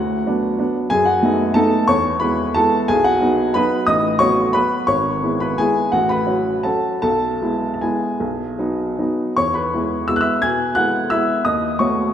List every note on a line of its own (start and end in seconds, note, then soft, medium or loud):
0.00 0.25 D2 medium
0.00 0.72 F#4 medium
0.00 0.75 F#5 medium
0.26 0.56 F#3 medium
0.26 0.56 B3 medium
0.26 0.56 D4 medium
0.58 0.88 F#3 medium
0.58 0.88 B3 medium
0.58 0.88 D4 medium
0.90 1.22 F#2 medium
0.90 1.06 G#4 medium
0.90 1.06 G#5 loud
1.05 1.52 F#4 medium
1.05 1.55 F#5 medium
1.23 1.53 A3 medium
1.23 1.53 B3 medium
1.23 1.53 D#4 medium
1.54 1.85 A3 medium
1.54 1.85 B3 medium
1.54 1.86 D#4 medium
1.54 1.86 A4 medium
1.54 1.88 A5 loud
1.88 2.20 E2 medium
1.88 2.19 C#5 medium
1.88 2.21 C#6 loud
2.20 2.52 G#3 medium
2.20 2.53 B3 medium
2.20 2.53 E4 medium
2.20 2.53 B4 medium
2.20 2.55 B5 loud
2.55 2.86 G#3 medium
2.55 2.86 B3 medium
2.55 2.86 E4 medium
2.55 2.87 A4 medium
2.55 2.89 A5 loud
2.88 3.21 B1 medium
2.88 3.05 G#4 medium
2.88 3.05 G#5 loud
3.04 3.52 F#4 medium
3.04 3.55 F#5 loud
3.21 3.51 F#3 medium
3.21 3.52 B3 medium
3.21 3.52 D#4 medium
3.54 3.85 F#3 medium
3.54 3.85 B3 medium
3.54 3.85 D#4 medium
3.54 3.86 B4 medium
3.54 3.87 B5 loud
3.87 4.19 A1 medium
3.87 4.18 D#5 medium
3.87 4.20 D#6 loud
4.19 4.51 F#3 medium
4.19 4.51 B3 medium
4.19 4.51 F#4 medium
4.19 4.52 C#5 medium
4.19 4.54 C#6 loud
4.53 4.85 F#3 medium
4.53 4.85 B3 medium
4.53 4.85 F#4 medium
4.53 4.86 B4 medium
4.53 4.88 B5 loud
4.87 5.22 G#1 medium
4.87 5.37 C#5 medium
4.87 5.40 C#6 medium
5.23 5.55 G#3 medium
5.23 5.56 B3 medium
5.23 5.56 E4 medium
5.40 5.58 B4 medium
5.40 5.59 B5 medium
5.58 5.90 G#3 medium
5.58 5.90 B3 medium
5.58 5.90 E4 medium
5.58 5.91 G#4 medium
5.58 5.92 G#5 medium
5.92 6.26 A1 medium
5.92 6.08 F#4 medium
5.92 6.09 F#5 medium
6.09 6.61 B4 medium
6.09 6.64 B5 medium
6.27 6.60 F#3 medium
6.27 6.60 C#4 medium
6.27 6.61 F#4 medium
6.63 6.99 F#3 medium
6.63 6.99 C#4 medium
6.63 6.99 F#4 medium
6.63 7.00 A4 medium
6.63 7.01 A5 medium
7.02 7.41 B1 medium
7.02 7.70 A4 medium
7.02 7.72 A5 loud
7.42 7.78 G#3 soft
7.42 7.78 B3 soft
7.42 7.78 E4 medium
7.74 7.82 A5 medium
7.81 8.17 G#3 medium
7.81 8.17 B3 soft
7.81 8.17 E4 medium
7.81 9.14 G#4 medium
7.81 9.18 G#5 medium
8.20 8.57 B1 medium
8.59 8.94 F#3 medium
8.59 8.95 B3 medium
8.59 8.95 D#4 medium
8.98 9.33 F#3 medium
8.98 9.33 B3 soft
8.98 9.33 D#4 medium
9.37 9.72 E2 medium
9.37 9.54 C#5 medium
9.37 9.55 C#6 loud
9.54 10.05 B4 medium
9.54 10.08 B5 medium
9.73 10.05 G#3 medium
9.73 10.05 B3 soft
9.73 10.05 E4 medium
10.08 10.39 G#3 medium
10.08 10.39 B3 medium
10.08 10.39 E4 medium
10.08 10.15 E6 medium
10.16 10.22 F#6 medium
10.21 10.41 E5 medium
10.21 10.41 E6 medium
10.42 10.75 B2 medium
10.42 10.74 G#5 medium
10.42 10.75 G#6 loud
10.75 11.08 G#3 soft
10.75 11.08 B3 medium
10.75 11.08 E4 medium
10.75 11.09 F#5 medium
10.75 11.11 F#6 medium
11.10 11.42 G#3 soft
11.10 11.43 B3 medium
11.10 11.43 E4 medium
11.10 11.43 E5 medium
11.10 11.45 E6 medium
11.45 11.79 D#2 medium
11.45 11.78 D#5 medium
11.45 11.80 D#6 medium
11.79 12.13 A3 soft
11.79 12.13 B3 soft
11.79 12.13 F#4 medium
11.79 12.13 C#5 medium
11.79 12.13 C#6 medium